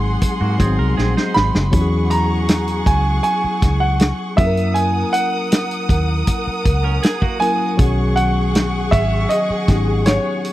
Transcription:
0.00 0.16 G#1 medium
0.00 0.55 F#3 medium
0.00 0.55 G#3 medium
0.00 0.59 C4 medium
0.00 0.56 D#4 medium
0.00 0.56 G#4 medium
0.00 1.69 G#4 medium
0.00 1.69 F#5 medium
0.00 1.69 C6 medium
0.21 kick medium
0.21 closed hi-hat medium
0.41 0.57 G#2 medium
0.41 0.59 A#3 medium
0.41 0.59 F#4 medium
0.58 0.76 G#1 medium
0.58 1.70 F#3 medium
0.58 1.73 G#3 medium
0.58 0.66 B3 soft
0.58 0.78 C4 medium
0.58 1.73 D#4 medium
0.58 0.78 G#4 medium
0.58 1.73 G#4 medium
0.58 kick medium
0.58 closed hi-hat medium
0.66 1.76 C4 medium
0.79 0.95 C2 medium
0.79 0.97 A#4 medium
0.97 1.14 A#1 medium
0.97 1.16 C4 medium
0.97 1.15 G#4 medium
0.97 snare medium
1.17 1.71 D#4 medium
1.17 1.71 C5 medium
1.17 snare medium
1.34 1.52 G#1 medium
1.34 2.13 B5 loud
1.34 snare medium
1.55 1.71 F#1 medium
1.55 snare medium
1.71 2.83 E2 medium
1.71 4.33 F#3 medium
1.71 4.34 B3 medium
1.71 4.34 C#4 medium
1.71 4.34 E4 medium
1.71 1.80 F#4 medium
1.71 4.34 G#4 medium
1.71 4.34 F#5 medium
1.71 4.34 C#6 medium
1.71 kick loud
1.71 closed hi-hat medium
1.81 4.38 G#4 medium
2.10 2.89 A#5 loud
2.10 closed hi-hat medium
2.49 snare loud
2.49 closed hi-hat medium
2.68 closed hi-hat medium
2.86 3.19 C#2 medium
2.86 3.22 G#5 loud
2.86 kick loud
2.86 closed hi-hat medium
3.23 3.82 G#5 loud
3.23 closed hi-hat medium
3.44 muted fingered electric bass stroke soft
3.62 4.11 C#2 medium
3.62 kick medium
3.62 snare soft
3.62 closed hi-hat medium
3.80 4.39 F#5 loud
4.00 snare loud
4.00 closed hi-hat medium
4.36 5.03 F#2 medium
4.36 7.36 F#3 medium
4.36 7.36 A#3 medium
4.36 7.37 C#4 medium
4.36 7.37 E4 medium
4.36 4.45 G#4 medium
4.36 7.75 A#4 medium
4.36 4.76 E5 medium
4.36 7.75 F#5 medium
4.36 7.75 D#6 medium
4.36 kick loud
4.36 closed hi-hat medium
4.46 7.41 A#4 medium
4.57 closed hi-hat medium
4.74 5.10 G#5 loud
4.74 closed hi-hat medium
5.13 7.47 F#5 loud
5.13 closed hi-hat medium
5.52 snare loud
5.52 closed hi-hat loud
5.71 closed hi-hat medium
5.89 6.22 D#2 medium
5.89 kick loud
5.89 closed hi-hat medium
6.27 kick medium
6.27 closed hi-hat medium
6.47 muted fingered electric bass stroke soft
6.65 6.98 C#2 medium
6.65 kick medium
6.65 closed hi-hat medium
6.84 7.02 C#4 medium
6.84 7.02 A#4 medium
7.03 7.21 G#4 medium
7.03 snare loud
7.03 closed hi-hat medium
7.22 7.76 A#3 medium
7.22 7.76 F#4 medium
7.22 kick medium
7.40 7.76 F#3 soft
7.40 7.79 A#3 soft
7.40 7.78 C#4 soft
7.40 7.79 E4 soft
7.40 7.79 A#4 medium
7.40 8.18 G#5 loud
7.40 closed hi-hat medium
7.77 8.89 B1 loud
7.77 9.65 D#3 medium
7.77 9.64 F#3 medium
7.77 9.64 B3 medium
7.77 9.65 C#4 medium
7.77 10.53 G#4 medium
7.77 9.65 G#4 medium
7.77 10.53 F#5 medium
7.77 10.53 C#6 medium
7.77 kick loud
7.77 closed hi-hat medium
8.16 8.94 F#5 loud
8.16 closed hi-hat medium
8.55 snare loud
8.55 closed hi-hat medium
8.91 9.25 G#1 medium
8.91 9.31 E5 medium
8.91 kick loud
8.91 closed hi-hat medium
9.29 10.02 D#5 loud
9.29 closed hi-hat medium
9.50 muted fingered electric bass stroke soft
9.68 10.17 G#1 medium
9.68 10.53 F#3 soft
9.68 10.53 B3 soft
9.68 10.53 C#4 soft
9.68 10.53 D#4 soft
9.68 9.75 G4 soft
9.68 kick medium
9.68 snare soft
9.68 closed hi-hat medium
9.76 10.53 G#4 medium
10.06 10.53 C#5 medium
10.06 snare loud
10.06 closed hi-hat medium
10.45 closed hi-hat medium

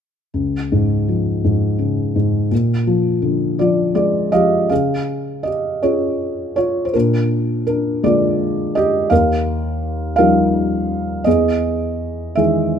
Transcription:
0.34 2.47 C#2 soft
0.72 1.43 G#2 soft
1.08 2.47 F3 soft
1.44 2.14 G#2 soft
1.79 2.48 C#3 soft
2.15 2.50 G#2 soft
2.51 4.67 A#2 soft
2.87 3.58 F3 soft
3.22 4.66 D3 soft
3.59 4.32 F3 soft
3.59 4.30 F4 soft
3.59 3.93 D5 soft
3.95 4.68 G#3 soft
3.95 4.30 D5 medium
4.32 4.69 F3 soft
4.32 4.68 G4 soft
4.32 4.71 D#5 medium
4.32 4.68 F5 soft
4.69 6.90 C#3 soft
4.69 5.42 G#4 soft
4.69 5.47 F5 soft
5.43 5.80 G4 soft
5.43 5.79 D#5 soft
5.83 6.91 C#4 soft
5.83 6.56 F4 soft
5.83 6.91 G#4 soft
5.83 6.55 C#5 soft
6.56 6.86 F4 soft
6.56 6.88 C#5 medium
6.85 6.93 C5 soft
6.94 9.07 A#2 soft
6.94 7.64 D4 soft
6.94 7.63 A#4 soft
7.67 8.02 D4 soft
7.67 8.01 A#4 medium
8.03 9.08 D3 soft
8.03 9.07 G#3 soft
8.03 9.08 A#3 soft
8.03 8.73 F4 soft
8.03 8.78 D5 medium
8.75 9.09 G4 medium
8.75 9.12 D#5 medium
9.10 11.22 D#2 soft
9.10 10.15 A#4 medium
9.10 10.15 F5 medium
10.16 11.23 F3 soft
10.16 11.23 G3 soft
10.16 11.24 D#4 soft
10.16 11.22 A#4 medium
10.16 11.21 F5 medium
11.24 12.79 E2 soft
11.24 12.33 G#4 soft
11.24 12.39 D#5 medium
12.35 12.79 D#3 soft
12.35 12.79 E3 soft
12.35 12.79 G#3 soft
12.35 12.79 G#4 soft
12.35 12.79 E5 medium

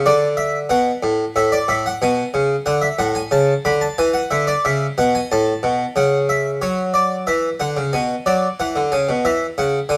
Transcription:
0.06 0.69 D3 medium
0.06 0.26 D5 medium
0.37 0.58 E5 medium
0.70 0.90 B2 medium
0.70 1.34 F#5 medium
1.03 1.23 A2 medium
1.36 1.56 A2 medium
1.36 1.52 E5 medium
1.52 1.68 D5 medium
1.68 1.89 A2 medium
1.68 1.85 E5 medium
1.86 2.01 F#5 medium
2.02 2.22 B2 loud
2.02 2.65 G#5 medium
2.34 2.54 C#3 medium
2.66 2.86 D3 loud
2.66 2.82 F#5 medium
2.82 2.98 E5 medium
2.99 3.19 A2 medium
2.99 3.15 F#5 medium
3.15 3.31 G#5 medium
3.31 3.52 C#3 medium
3.31 3.52 A5 medium
3.65 3.85 D3 medium
3.65 3.81 B5 medium
3.81 3.97 A5 medium
3.98 4.19 E3 loud
3.98 4.14 G#5 medium
4.14 4.30 F#5 medium
4.31 4.51 D3 medium
4.31 4.47 E5 medium
4.47 4.63 D5 medium
4.65 4.85 C#3 medium
4.65 4.85 E5 medium
4.98 5.18 B2 medium
4.98 5.13 F#5 medium
5.15 5.30 G#5 medium
5.32 5.52 A2 medium
5.32 5.95 A5 medium
5.63 5.84 B2 medium
5.96 6.60 C#3 medium
5.96 6.17 F#5 medium
6.29 6.50 E5 medium
6.62 7.26 F#3 medium
6.62 6.82 C#5 medium
6.94 7.15 D5 medium
7.27 7.48 E3 medium
7.27 7.48 E5 medium
7.60 7.76 D3 medium
7.60 7.80 F#5 medium
7.77 7.93 C#3 medium
7.93 8.14 B2 medium
7.93 8.13 G#5 medium
8.26 8.46 F#3 medium
8.26 8.46 D5 medium
8.60 8.75 E3 soft
8.60 8.80 F#5 medium
8.76 8.91 D3 medium
8.92 9.07 C#3 medium
8.92 9.12 G#5 medium
9.09 9.24 B2 medium
9.25 9.45 E3 medium
9.25 9.45 E5 medium
9.58 9.78 C#3 medium
9.58 9.78 F#5 medium
9.89 9.97 D3 medium
9.89 9.97 G#5 medium

